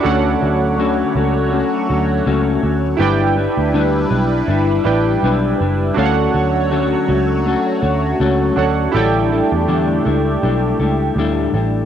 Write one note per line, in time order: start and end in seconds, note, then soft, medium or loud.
0.00 2.95 D4 medium
0.00 2.96 F#4 medium
0.00 2.96 A4 medium
0.00 0.23 B5 medium
0.00 0.23 D6 medium
0.04 0.34 D2 loud
0.04 0.42 D3 medium
0.04 2.99 F#3 medium
0.04 0.42 A3 medium
0.04 2.99 A3 medium
0.04 0.42 C#4 loud
0.04 0.41 F#4 medium
0.04 2.99 F#4 medium
0.04 0.40 A4 medium
0.04 2.97 C#5 medium
0.04 2.99 C#5 medium
0.04 2.98 F#5 medium
0.41 1.02 D2 loud
0.41 0.78 C#4 medium
0.41 0.78 F#4 medium
0.41 0.79 A4 medium
0.78 1.15 D3 medium
0.78 1.16 A3 medium
0.78 1.16 C#4 medium
0.78 1.15 F#4 loud
0.78 1.14 A4 medium
1.15 1.61 C#2 medium
1.15 1.51 C#4 soft
1.15 1.52 F#4 medium
1.15 1.53 A4 medium
1.52 1.90 A3 medium
1.52 1.90 C#4 medium
1.52 1.89 F#4 medium
1.52 1.88 A4 medium
1.89 2.20 D2 loud
1.89 2.26 C#4 medium
1.89 2.26 F#4 medium
1.89 2.26 A4 medium
2.26 2.56 C#2 medium
2.26 2.64 A3 medium
2.26 2.64 C#4 loud
2.26 2.62 F#4 loud
2.26 2.62 A4 medium
2.63 2.93 D2 medium
2.63 2.99 C#4 soft
2.63 3.00 F#4 medium
2.63 3.00 A4 medium
2.97 3.46 G1 loud
2.97 3.37 G3 medium
2.97 3.37 D4 medium
2.97 5.94 D4 medium
2.97 4.80 E4 medium
2.97 3.37 E4 loud
2.97 4.81 G4 medium
2.97 4.82 B4 medium
2.97 4.82 D5 medium
3.01 5.94 G3 medium
3.01 5.95 E4 medium
3.01 5.94 B4 loud
3.01 3.36 B4 loud
3.01 4.83 G5 medium
3.37 3.73 D4 soft
3.37 3.74 E4 medium
3.37 3.74 B4 medium
3.57 3.71 D2 medium
3.74 4.04 D2 medium
3.74 4.12 G3 medium
3.74 4.12 D4 medium
3.74 4.11 E4 loud
3.74 4.09 B4 loud
4.10 4.41 B1 loud
4.10 4.48 D4 medium
4.10 4.48 E4 medium
4.10 4.48 B4 medium
4.47 4.78 G1 loud
4.47 4.85 G3 medium
4.47 4.86 D4 medium
4.47 4.86 E4 medium
4.47 4.85 B4 medium
4.84 5.15 A1 loud
4.84 5.23 D4 medium
4.84 5.96 E4 medium
4.84 5.23 E4 soft
4.84 5.97 G4 medium
4.84 5.97 B4 medium
4.84 5.23 B4 medium
4.84 5.97 D5 medium
4.84 5.98 G5 medium
5.23 5.53 B1 loud
5.23 5.61 G3 medium
5.23 5.61 D4 medium
5.23 5.60 E4 medium
5.23 5.59 B4 loud
5.60 5.90 F#1 medium
5.60 5.97 D4 medium
5.60 5.97 E4 medium
5.60 5.97 B4 medium
5.94 6.27 D2 loud
5.94 6.34 D3 medium
5.94 8.91 F#3 medium
5.94 8.91 A3 medium
5.94 6.35 A3 medium
5.94 6.35 C#4 medium
5.94 8.51 D4 medium
5.94 8.52 F#4 medium
5.94 8.91 F#4 medium
5.94 6.34 F#4 loud
5.94 8.53 A4 medium
5.94 8.91 C#5 medium
5.94 8.53 C#5 medium
5.99 6.33 A4 loud
5.99 6.05 F5 medium
6.05 8.57 F#5 medium
6.34 6.94 D2 loud
6.34 6.71 C#4 soft
6.34 6.71 F#4 medium
6.34 6.71 A4 medium
6.71 7.08 D3 medium
6.71 7.09 A3 medium
6.71 7.09 C#4 medium
6.71 7.08 F#4 loud
6.71 7.07 A4 loud
7.08 7.55 C#2 medium
7.08 7.45 C#4 medium
7.08 7.46 F#4 medium
7.08 7.45 A4 medium
7.46 7.83 A3 medium
7.46 7.83 C#4 medium
7.46 7.82 F#4 medium
7.46 7.80 A4 medium
7.82 8.12 D2 loud
7.82 8.19 C#4 soft
7.82 8.20 F#4 medium
7.82 8.19 A4 medium
8.20 8.50 C#2 loud
8.20 8.57 A3 medium
8.20 8.57 C#4 loud
8.20 8.58 F#4 medium
8.20 8.56 A4 loud
8.56 8.87 D2 loud
8.56 8.94 D4 medium
8.56 8.94 F#4 medium
8.56 8.95 F#4 medium
8.56 8.94 A4 medium
8.56 8.93 A4 medium
8.56 8.95 C#5 medium
8.56 8.95 F#5 medium
8.60 8.95 C#4 medium
8.92 9.40 A1 loud
8.92 9.32 A2 medium
8.92 9.32 D3 medium
8.92 11.85 A3 medium
8.92 11.85 D4 medium
8.92 11.85 E4 medium
8.92 11.85 G4 medium
8.92 11.85 G4 loud
8.92 11.85 A4 medium
8.92 11.85 D5 medium
8.96 9.32 G3 medium
8.96 9.32 D4 medium
8.96 9.31 E4 medium
8.96 9.31 A4 loud
8.96 11.85 G5 medium
9.32 9.68 G3 medium
9.32 9.67 D4 medium
9.32 9.67 E4 medium
9.32 9.68 A4 medium
9.52 9.65 E2 medium
9.68 9.98 E2 medium
9.68 10.05 A2 medium
9.68 10.05 D3 medium
9.68 10.06 G3 medium
9.68 10.05 D4 medium
9.68 10.05 E4 medium
9.68 10.04 A4 medium
10.05 10.36 C#2 medium
10.05 10.42 G3 medium
10.05 10.42 D4 medium
10.05 10.43 E4 medium
10.05 10.42 A4 medium
10.43 10.73 B1 loud
10.43 10.80 G3 medium
10.43 10.80 D4 medium
10.43 10.79 E4 medium
10.43 10.78 A4 medium
10.79 11.09 C#2 medium
10.79 11.17 G3 medium
10.79 11.18 D4 soft
10.79 11.17 E4 medium
10.79 11.17 A4 medium
11.16 11.46 D2 medium
11.16 11.54 A2 medium
11.16 11.55 D3 medium
11.16 11.54 G3 medium
11.16 11.54 D4 loud
11.16 11.53 E4 loud
11.16 11.53 A4 medium
11.54 11.83 A1 medium
11.54 11.85 G3 soft
11.54 11.85 D4 medium
11.54 11.85 E4 medium
11.54 11.85 A4 medium